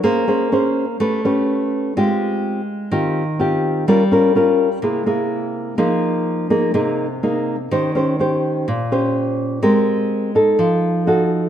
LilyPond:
\new Staff \with { instrumentName = "Nylon-string guitar" } { \time 4/4 \key aes \major \tempo 4 = 125 << { <des' aes' c''>8 <des' aes' c''>8 <des' aes' c''>8 r8 <cis' g' b'>8 <cis' g' b'>4. | <c' f' g'>4. r8 <c' f' g'>8 r8 <c' f' g'>4 | <des' f' bes'>8 <des' f' bes'>8 <des' f' bes'>8 r8 <bes e' aes'>8 <bes e' aes'>4. | <bes ees' aes'>4. <bes ees' aes'>8 <bes ees' aes'>8 r8 <bes ees' aes'>8 r8 |
<des' g' c''>8 <des' g' c''>8 <des' g' c''>4 r8 <des' g' c''>4. | <c' g' bes'>4. <ees' a'>4. <ees' ges' a'>4 | } \\ { bes2 a2 | aes2 ees2 | g2 c2 | f2 c2 |
ees2 bes,2 | aes2 f2 | } >> }